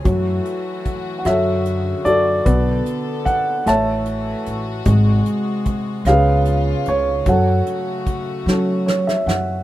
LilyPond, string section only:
\new Staff \with { instrumentName = "String section" } { \time 6/8 \key fis \minor \tempo 4. = 50 << { fis'2. | a'4. fis'4.~ | fis'4. eis'4. | fis'2. | } \\ { <e a>4. <cis d>4. | <d b>4. <e a>4. | <bis, gis>4. <cis b>4. | <cis a>2. | } >> }